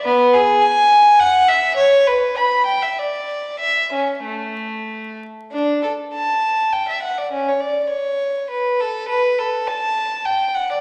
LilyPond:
\new Staff \with { instrumentName = "Violin" } { \time 3/4 \key a \mixolydian \tempo 4 = 101 b8 gis'8 gis''4 fis''8 e''8 | cis''8 b'8 b''8 g''16 e''16 d''4 | e''8 cis'8 a4. r8 | d'8 a'8 a''4 g''16 e''16 fis''16 d''16 |
cis'16 cis''16 d''8 cis''4 b'8 a'8 | b'8 a'8 a''4 g''8 fis''16 d''16 | }